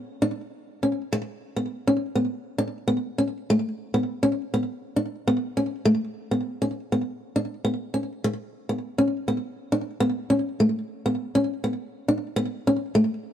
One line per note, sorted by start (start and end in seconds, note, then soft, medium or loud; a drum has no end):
0.22 0.40 D4 medium
0.83 1.01 C#4 medium
1.13 muted steel-string acoustic guitar stroke medium
1.56 1.75 B3 medium
1.87 2.05 C#4 medium
2.15 2.34 B3 medium
2.58 2.77 D4 medium
2.88 3.06 B3 medium
3.18 3.37 C#4 medium
3.50 3.68 A3 medium
3.94 4.12 B3 medium
4.23 4.41 C#4 medium
4.54 4.72 B3 medium
4.96 5.15 D4 medium
5.27 5.45 B3 medium
5.57 5.75 C#4 medium
5.85 6.04 A3 medium
6.31 6.49 B3 medium
6.62 6.79 C#4 medium
6.92 7.10 B3 medium
7.36 7.53 D4 medium
7.65 7.82 B3 medium
7.94 8.12 C#4 medium
8.24 muted steel-string acoustic guitar stroke medium
8.69 8.87 B3 medium
8.98 9.16 C#4 medium
9.28 9.46 B3 medium
9.72 9.90 D4 medium
10.00 10.18 B3 medium
10.30 10.48 C#4 medium
10.60 10.78 A3 medium
11.06 11.23 B3 medium
11.35 11.53 C#4 medium
11.64 11.82 B3 medium
12.08 12.26 D4 medium
12.36 12.54 B3 medium
12.67 12.85 C#4 medium
12.95 13.13 A3 medium